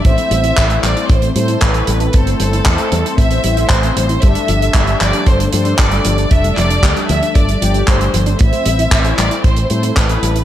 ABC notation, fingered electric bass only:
X:1
M:4/4
L:1/8
Q:1/4=115
K:Am
V:1 name="Fingered electric bass" clef=bass
A,,, A,,, A,,, A,,, A,,, A,, A,,, A,,, | G,,, G,,, E,, E,, A,,, A,,, A,,, A,,, | G,,, G,,, G,,, G,,, G,,, G,, G,,, G,,, | F,,, F,,, D,, D,, G,,, G,,, G,,, G,,, |
A,,, A,,, A,,, A,,, A,,, A,, A,,, A,,, |]